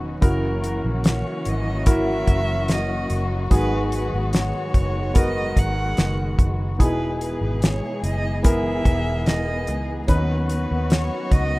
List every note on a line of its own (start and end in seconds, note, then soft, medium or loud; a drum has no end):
0.00 0.19 E1 loud
0.00 0.19 D#3 medium
0.00 0.18 F#3 medium
0.00 0.19 B3 medium
0.00 0.14 C#4 medium
0.00 0.19 C#4 medium
0.00 0.14 D#4 medium
0.00 0.19 F#4 medium
0.00 0.14 B4 medium
0.00 downlifter medium
0.21 0.80 F#1 medium
0.21 1.41 C#3 medium
0.21 3.48 E3 medium
0.21 6.76 F#3 medium
0.21 3.47 A#3 medium
0.21 3.48 C#4 medium
0.21 1.78 E4 medium
0.21 1.78 F#4 medium
0.21 6.76 F#4 medium
0.21 1.78 A#4 medium
0.21 kick medium
0.21 closed hi-hat medium
0.26 0.62 A#4 medium
0.64 0.85 A#4 medium
0.64 closed hi-hat medium
0.84 1.22 A#1 medium
1.04 snare loud
1.04 closed hi-hat medium
1.08 1.50 C#5 medium
1.45 2.24 G#1 medium
1.45 1.88 D#5 medium
1.45 closed hi-hat medium
1.86 3.42 E4 medium
1.86 3.43 F#4 medium
1.86 3.43 A#4 medium
1.86 2.74 E5 loud
1.86 kick loud
1.86 closed hi-hat loud
2.27 3.06 F#1 medium
2.27 kick medium
2.27 closed hi-hat medium
2.68 3.32 D#5 medium
2.68 snare medium
2.68 closed hi-hat medium
3.10 3.48 F#1 medium
3.10 closed hi-hat medium
3.50 4.09 G#1 medium
3.50 4.70 G#2 medium
3.50 4.70 D#3 medium
3.50 6.77 D#3 medium
3.50 6.77 G#3 medium
3.50 5.07 B3 medium
3.50 6.77 B3 medium
3.50 5.07 F#4 medium
3.50 5.07 G#4 medium
3.50 3.91 B4 loud
3.50 kick medium
3.50 closed hi-hat medium
3.92 4.32 B4 medium
3.92 closed hi-hat medium
4.14 4.52 G#1 medium
4.33 5.19 C#5 medium
4.33 snare loud
4.33 closed hi-hat medium
4.74 5.53 F#1 medium
4.74 kick medium
4.74 closed hi-hat medium
5.14 6.71 B3 medium
5.14 6.71 F#4 medium
5.14 6.71 A#4 medium
5.14 5.60 D#5 loud
5.14 kick loud
5.14 closed hi-hat loud
5.57 5.95 G#1 loud
5.57 6.40 F#5 loud
5.57 kick medium
5.57 closed hi-hat medium
5.97 6.36 F#1 medium
5.97 snare medium
5.97 closed hi-hat medium
6.39 6.80 F#1 medium
6.39 kick medium
6.39 closed hi-hat medium
6.79 7.38 E1 loud
6.79 7.99 B2 medium
6.79 10.06 E3 medium
6.79 10.05 G#3 medium
6.79 11.59 B3 medium
6.79 8.35 D#4 medium
6.79 8.36 E4 medium
6.79 8.36 G#4 medium
6.79 10.06 G#4 medium
6.79 7.19 B4 medium
6.79 kick medium
6.79 closed hi-hat medium
7.21 7.64 B4 medium
7.21 closed hi-hat medium
7.41 7.80 G#1 medium
7.62 8.03 C#5 medium
7.62 snare loud
7.62 closed hi-hat medium
8.03 8.81 F#1 medium
8.03 8.42 D#5 medium
8.03 closed hi-hat medium
8.43 10.00 B3 medium
8.43 10.00 E4 medium
8.43 10.01 A#4 medium
8.43 9.28 E5 loud
8.43 kick loud
8.43 closed hi-hat loud
8.85 9.68 E1 loud
8.85 kick medium
8.85 closed hi-hat medium
9.26 9.88 D#5 medium
9.26 snare loud
9.26 closed hi-hat medium
9.67 10.06 C#2 medium
9.67 closed hi-hat medium
10.08 10.66 D#2 medium
10.08 11.59 D#3 medium
10.08 11.28 D#3 medium
10.08 11.59 F#3 medium
10.08 11.59 C#4 medium
10.08 11.59 D#4 medium
10.08 11.59 F#4 medium
10.08 10.46 B4 medium
10.08 11.59 B4 medium
10.08 kick medium
10.08 closed hi-hat medium
10.49 10.92 B4 medium
10.49 closed hi-hat medium
10.71 11.09 D#2 medium
10.90 11.33 C#5 medium
10.90 snare loud
10.90 closed hi-hat medium
11.31 11.59 C#2 medium
11.31 11.59 D#5 loud
11.31 kick medium
11.31 closed hi-hat medium